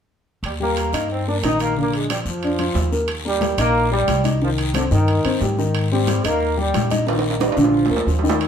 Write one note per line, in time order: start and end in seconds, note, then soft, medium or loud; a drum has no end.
0.43 0.89 D#2 medium
0.43 0.52 G3 medium
0.43 high timbale medium
0.43 long guiro medium
0.60 0.87 G3 medium
0.60 1.08 A#3 medium
0.60 0.87 G4 medium
0.76 high timbale medium
0.76 low timbale medium
0.76 short guiro medium
0.93 1.39 G2 medium
0.93 1.21 D#4 medium
0.93 1.21 D#5 medium
0.93 high timbale medium
0.93 short guiro medium
1.10 1.27 C4 medium
1.10 long guiro medium
1.28 1.41 A#3 medium
1.28 1.36 D4 medium
1.28 1.41 A#4 medium
1.43 2.20 A#1 medium
1.43 1.72 D#3 medium
1.43 1.60 D#4 loud
1.43 1.72 D#4 medium
1.43 high timbale medium
1.43 low timbale medium
1.43 short guiro medium
1.60 1.76 A#3 medium
1.60 high timbale medium
1.60 short guiro medium
1.77 2.04 D3 medium
1.77 1.93 A#3 medium
1.77 2.04 D4 medium
1.77 long guiro medium
1.93 2.09 G#3 medium
1.93 high timbale medium
2.10 2.37 F3 medium
2.10 2.17 G3 medium
2.10 2.37 F4 soft
2.10 high timbale medium
2.10 low timbale medium
2.10 short guiro medium
2.25 2.72 F2 medium
2.25 2.89 F3 medium
2.25 short guiro medium
2.43 2.57 D4 medium
2.43 2.57 D5 medium
2.43 high timbale medium
2.43 long guiro medium
2.59 2.86 F3 medium
2.59 2.87 F4 medium
2.59 high timbale medium
2.75 3.53 D#2 medium
2.75 low timbale medium
2.75 short guiro medium
2.92 3.06 A#3 medium
2.92 3.06 A#4 medium
2.92 short guiro medium
3.08 high conga soft
3.08 high timbale medium
3.08 long guiro medium
3.24 3.57 G3 medium
3.24 3.53 A#3 medium
3.24 3.52 A#4 medium
3.24 high conga soft
3.41 high conga medium
3.41 high timbale medium
3.41 low timbale medium
3.41 short guiro medium
3.57 4.05 A#1 medium
3.57 3.90 A#3 loud
3.57 3.86 D#4 medium
3.57 3.86 D#5 medium
3.57 high conga soft
3.57 high timbale medium
3.57 short guiro medium
3.74 high conga soft
3.74 long guiro medium
3.91 4.19 G3 medium
3.91 4.23 G3 loud
3.91 4.19 G4 medium
3.91 high conga soft
4.08 4.85 C2 medium
4.08 high conga medium
4.08 high timbale medium
4.08 low timbale medium
4.08 short guiro medium
4.24 4.38 D#4 medium
4.24 4.38 D#5 medium
4.24 high conga medium
4.24 high timbale medium
4.24 short guiro medium
4.42 4.69 D#3 medium
4.42 4.50 F3 medium
4.42 4.69 D#4 medium
4.42 long guiro medium
4.58 4.75 D#3 medium
4.58 high conga soft
4.58 high timbale medium
4.74 4.84 D3 medium
4.74 4.88 C4 medium
4.74 4.88 C5 medium
4.74 high conga medium
4.74 high timbale medium
4.74 low timbale medium
4.74 short guiro medium
4.91 5.22 G2 medium
4.91 5.18 D#3 medium
4.91 5.55 D#3 medium
4.91 5.19 D#4 medium
4.91 high conga soft
4.91 short guiro medium
5.08 high conga soft
5.08 high timbale medium
5.08 long guiro medium
5.24 5.40 G2 medium
5.24 5.38 C4 medium
5.24 5.39 C5 medium
5.24 high conga soft
5.24 high timbale medium
5.41 6.18 G#2 medium
5.41 5.55 G3 medium
5.41 5.55 G4 medium
5.41 high conga soft
5.41 low timbale medium
5.41 short guiro medium
5.57 5.85 D#3 medium
5.57 5.86 D#4 medium
5.57 high conga soft
5.57 short guiro medium
5.75 high conga soft
5.75 high timbale medium
5.75 long guiro medium
5.91 6.23 G3 medium
5.91 6.19 C4 medium
5.91 6.19 G4 medium
5.91 high conga soft
6.07 high conga medium
6.07 high timbale medium
6.07 low timbale medium
6.07 short guiro medium
6.24 6.71 D#2 medium
6.24 6.58 A#3 loud
6.24 6.52 D#4 medium
6.24 6.52 D#5 medium
6.24 high conga soft
6.24 high timbale medium
6.24 short guiro medium
6.40 high conga soft
6.40 long guiro medium
6.57 6.85 G3 medium
6.57 6.89 G3 medium
6.57 6.85 G4 medium
6.57 high conga soft
6.74 7.51 A#1 medium
6.74 high conga medium
6.74 high timbale medium
6.74 low timbale medium
6.74 short guiro medium
6.91 7.05 D#4 medium
6.91 7.05 D#5 medium
6.91 high conga medium
6.91 high timbale medium
6.91 short guiro medium
7.07 7.34 D#3 medium
7.07 7.15 F3 medium
7.07 7.34 D#4 medium
7.07 high conga soft
7.07 high timbale medium
7.07 long guiro medium
7.19 high timbale medium
7.25 7.40 D#3 medium
7.25 high conga soft
7.30 high timbale medium
7.40 7.59 G3 medium
7.40 7.54 D#4 medium
7.40 7.54 D#5 medium
7.40 high conga medium
7.40 high timbale medium
7.40 short guiro medium
7.52 high timbale medium
7.57 7.88 A#1 medium
7.57 7.84 D3 medium
7.57 8.21 F3 medium
7.57 7.84 D4 medium
7.57 high conga soft
7.57 short guiro medium
7.64 low timbale medium
7.74 high conga soft
7.74 long guiro medium
7.86 low timbale medium
7.90 8.06 D2 medium
7.90 8.04 A#3 medium
7.90 8.04 A#4 medium
7.90 high conga soft
7.96 low timbale medium
8.06 8.48 D#2 medium
8.06 8.21 F3 medium
8.06 8.21 F4 medium
8.06 high conga soft
8.06 short guiro medium
8.19 high conga soft
8.19 low timbale medium
8.23 8.48 D#3 medium
8.23 8.48 D#4 medium
8.23 short guiro medium
8.29 low timbale loud
8.39 high conga soft
8.39 high timbale medium
8.39 long guiro medium